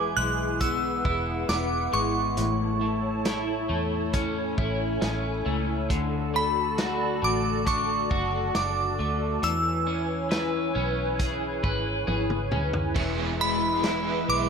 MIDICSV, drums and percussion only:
0, 0, Header, 1, 2, 480
1, 0, Start_track
1, 0, Tempo, 882353
1, 1290, Time_signature, 4, 2, 24, 8
1, 7883, End_track
2, 0, Start_track
2, 0, Title_t, "Drums"
2, 329, Note_on_c, 9, 42, 61
2, 331, Note_on_c, 9, 36, 78
2, 384, Note_off_c, 9, 42, 0
2, 386, Note_off_c, 9, 36, 0
2, 571, Note_on_c, 9, 36, 87
2, 626, Note_off_c, 9, 36, 0
2, 810, Note_on_c, 9, 38, 88
2, 811, Note_on_c, 9, 42, 63
2, 865, Note_off_c, 9, 38, 0
2, 865, Note_off_c, 9, 42, 0
2, 1290, Note_on_c, 9, 42, 58
2, 1344, Note_off_c, 9, 42, 0
2, 1769, Note_on_c, 9, 42, 69
2, 1771, Note_on_c, 9, 38, 98
2, 1824, Note_off_c, 9, 42, 0
2, 1826, Note_off_c, 9, 38, 0
2, 2249, Note_on_c, 9, 42, 67
2, 2251, Note_on_c, 9, 36, 77
2, 2304, Note_off_c, 9, 42, 0
2, 2305, Note_off_c, 9, 36, 0
2, 2491, Note_on_c, 9, 36, 95
2, 2546, Note_off_c, 9, 36, 0
2, 2730, Note_on_c, 9, 38, 99
2, 2731, Note_on_c, 9, 42, 64
2, 2785, Note_off_c, 9, 38, 0
2, 2785, Note_off_c, 9, 42, 0
2, 3210, Note_on_c, 9, 36, 95
2, 3211, Note_on_c, 9, 42, 64
2, 3264, Note_off_c, 9, 36, 0
2, 3265, Note_off_c, 9, 42, 0
2, 3689, Note_on_c, 9, 42, 68
2, 3692, Note_on_c, 9, 38, 103
2, 3744, Note_off_c, 9, 42, 0
2, 3746, Note_off_c, 9, 38, 0
2, 4170, Note_on_c, 9, 42, 61
2, 4171, Note_on_c, 9, 36, 79
2, 4224, Note_off_c, 9, 42, 0
2, 4226, Note_off_c, 9, 36, 0
2, 4412, Note_on_c, 9, 36, 86
2, 4466, Note_off_c, 9, 36, 0
2, 4650, Note_on_c, 9, 38, 96
2, 4651, Note_on_c, 9, 42, 66
2, 4705, Note_off_c, 9, 38, 0
2, 4705, Note_off_c, 9, 42, 0
2, 5130, Note_on_c, 9, 42, 58
2, 5184, Note_off_c, 9, 42, 0
2, 5610, Note_on_c, 9, 42, 70
2, 5612, Note_on_c, 9, 38, 105
2, 5665, Note_off_c, 9, 42, 0
2, 5667, Note_off_c, 9, 38, 0
2, 6090, Note_on_c, 9, 42, 67
2, 6091, Note_on_c, 9, 36, 83
2, 6144, Note_off_c, 9, 42, 0
2, 6145, Note_off_c, 9, 36, 0
2, 6331, Note_on_c, 9, 36, 92
2, 6385, Note_off_c, 9, 36, 0
2, 6570, Note_on_c, 9, 48, 47
2, 6624, Note_off_c, 9, 48, 0
2, 6691, Note_on_c, 9, 47, 54
2, 6745, Note_off_c, 9, 47, 0
2, 6809, Note_on_c, 9, 45, 75
2, 6863, Note_off_c, 9, 45, 0
2, 6928, Note_on_c, 9, 43, 83
2, 6982, Note_off_c, 9, 43, 0
2, 7048, Note_on_c, 9, 49, 80
2, 7049, Note_on_c, 9, 36, 100
2, 7102, Note_off_c, 9, 49, 0
2, 7103, Note_off_c, 9, 36, 0
2, 7527, Note_on_c, 9, 42, 70
2, 7529, Note_on_c, 9, 38, 102
2, 7581, Note_off_c, 9, 42, 0
2, 7583, Note_off_c, 9, 38, 0
2, 7883, End_track
0, 0, End_of_file